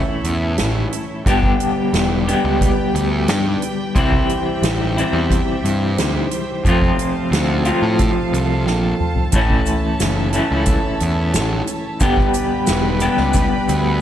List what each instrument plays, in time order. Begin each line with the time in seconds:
Already playing: clean electric guitar A2 E3 A3 C#4 E4, string section E4 A4 C#5 E5
0.24 picked electric bass E2, closed hi-hat
0.58 picked electric bass A1, snare, closed hi-hat
0.93 closed hi-hat
1.25 picked electric bass G1, clean electric guitar G2 D3 G3 B3 D4 G4, string section G4 B4 D5 G5, kick, closed hi-hat
1.43 kick
1.60 closed hi-hat
1.93 picked electric bass E1, snare, closed hi-hat
2.28 clean electric guitar G2 D3 G3 B3 D4 G4, closed hi-hat
2.44 picked electric bass C#2
2.61 kick, closed hi-hat
2.94 picked electric bass D2, closed hi-hat
3.28 picked electric bass G2, snare, closed hi-hat
3.62 closed hi-hat
3.95 picked electric bass C2, clean electric guitar C3 E3 G3 C4 E4, string section G4 C5 E5, kick, closed hi-hat
4.12 kick
4.29 closed hi-hat
4.62 picked electric bass A1, snare, closed hi-hat
4.97 clean electric guitar C3 E3 G3 C4 E4, closed hi-hat
5.13 picked electric bass E2
5.31 kick, closed hi-hat
5.64 picked electric bass G2, closed hi-hat
5.98 picked electric bass D2, snare, closed hi-hat
6.31 closed hi-hat
6.64 picked electric bass F2, clean electric guitar F2 C3 F3 A3, string section A4 F5 A5, kick, closed hi-hat
6.69 clean electric guitar C4 F4
6.82 kick
6.99 closed hi-hat
7.31 picked electric bass D2, snare, closed hi-hat
7.65 clean electric guitar F2 C3 F3 A3 C4 F4, closed hi-hat
7.82 picked electric bass A2
7.99 kick, closed hi-hat
8.33 picked electric bass C2, closed hi-hat
8.67 picked electric bass A#1, snare
9.00 mid tom
9.16 floor tom
9.32 picked electric bass A1, clean electric guitar A2 E3 A3 E4, string section A4 C#5 E5, kick, closed hi-hat, maracas
9.36 clean electric guitar C#4
9.50 kick
9.66 closed hi-hat, maracas
10.00 picked electric bass F#1, snare, closed hi-hat, maracas
10.33 clean electric guitar E3 A3 C#4 E4, closed hi-hat, maracas
10.37 clean electric guitar A2
10.51 picked electric bass C#2
10.66 kick, closed hi-hat, maracas
11.00 picked electric bass E2, closed hi-hat
11.34 picked electric bass A1, snare, closed hi-hat, maracas
11.67 closed hi-hat, maracas
12.00 picked electric bass G1, clean electric guitar G2 D3 G3 B3 D4 G4, string section B4 D5 G5 B5, kick, closed hi-hat, maracas
12.17 kick
12.34 closed hi-hat, maracas
12.67 picked electric bass E1, snare, closed hi-hat, maracas
13.00 clean electric guitar G2 D3 G3 B3 D4 G4, closed hi-hat, maracas
13.17 picked electric bass C#2, snare
13.33 kick, closed hi-hat, maracas
13.69 picked electric bass D2, closed hi-hat, maracas